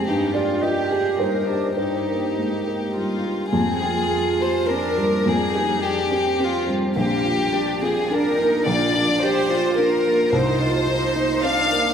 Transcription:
<<
  \new Staff \with { instrumentName = "Violin section" } { \time 3/4 \key f \dorian \tempo 4 = 106 g'8 f'8 g'8 aes'8 bes'4 | g'2 f'4 | aes'4. c''8 bes'4 | aes'4 g'4 f'8 r8 |
g'4. aes'8 bes'4 | d''4 c''4 bes'4 | c''2 f''4 | }
  \new Staff \with { instrumentName = "Upright piano" } { \time 3/4 \key f \dorian << { r8 d''8 ees''4 c''4 | c''4 bes'4. r8 | r2. | r2. |
r2. | r2. | r2. | } \\ { g,8 g'8 f'8 g'8 g8 g'8 | g,8 bes8 aes8 g'8 g8 g'8 | f,8 g''8 aes'8 g'8 c'8 g8 | f,8 g'8 aes'8 g'8 c'8 g8 |
bes,,8 f'8 g'8 f'8 d'8 bes8 | bes,,8 f'8 g'8 f'8 d'8 bes8 | c,8 ees'8 f'8 ees'8 c'8 bes8 | } >> }
  \new Staff \with { instrumentName = "Cello" } { \time 3/4 \key f \dorian ees'8 f'8 g'4 ees'8 d'8 | ees'2~ ees'8 r8 | c'8 f'4. d'4 | c'8 ees'8 d'8 c'4. |
bes4 d'8 c'8 d'8 ees'8 | f'8 d'8 g'8 f'4. | ees'8 f'8 ees'4 d'4 | }
>>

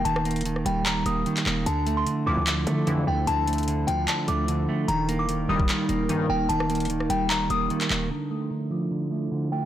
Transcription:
<<
  \new Staff \with { instrumentName = "Synth bell" } { \time 4/4 \key d \minor \tempo 4 = 149 a''4. g''8 bes''8 ees'''4. | a''8. c'''16 r8 d'''2 g''8 | a''4. g''8 a''8 d'''4. | bes''8. d'''16 r8 ees'''2 g''8 |
a''4. g''8 bes''8 ees'''4. | a''8. c'''16 r8 d'''2 g''8 | }
  \new Staff \with { instrumentName = "Ambient pad" } { \time 4/4 \key d \minor r1 | <f d' e' a'>1~ | <f d' e' a'>1 | <g bes ees' bes'>1~ |
<g bes ees' bes'>1 | <f d' e' a'>1 | }
  \new Staff \with { instrumentName = "Clean electric guitar" } { \clef bass \time 4/4 \key d \minor <ees bes>8 bes8 ees8 g8 ees8 bes8 ees8 bes8 | d8 a8 d8 f8 d8 a8 d8 a8 | d8 a8 d8 f8 d8 a8 d8 a8 | ees8 bes8 ees8 g8 ees8 bes8 ees8 bes8 |
ees8 bes8 ees8 g8 ees8 bes8 ees8 bes8 | d8 a8 d8 f8 d8 a8 d8 a8 | }
  \new Staff \with { instrumentName = "Analog polysynth" } { \clef bass \time 4/4 \key d \minor r1 | r4. <a,, f, e>16 r4 r16 <a,, f, e>8 r8 | r1 | r4. <bes,, g, ees>16 r4 r16 <bes,, g, ees>8 r8 |
r1 | r1 | }
  \new Staff \with { instrumentName = "808-style bass" } { \clef bass \time 4/4 \key d \minor ees,,4. ees,,4 ees,,8 r8 ees,,8 | d,4 r8 d,16 d,8. d4 d,8 | d,4. d,8 r8 d,4 r8 | ees,,4. ees,,8 r8 ees,,8 r8 ees,,8 |
ees,,4. ees,,4 ees,,8 r8 ees,,8 | r1 | }
  \new DrumStaff \with { instrumentName = "Drums" } \drummode { \time 4/4 hh16 ss16 hh32 hh32 hh32 hh32 hh16 ss16 hh8 <hc hh>8 hh8 hh16 <hc hh>16 hc8 | hh8 hh8 hh4 <hc hh>8 hh8 hh4 | hh8 hh32 hh32 hh32 hh32 hh8 hh8 <hc hh>8 hh8 hh4 | hh8 hh8 hh8. bd16 <hc hh>8 hh8 hh4 |
hh16 ss16 hh32 hh32 hh32 hh32 hh16 ss16 hh8 <hc hh>8 hh8 hh16 <hc hh>16 hc8 | r4 r4 r4 r4 | }
>>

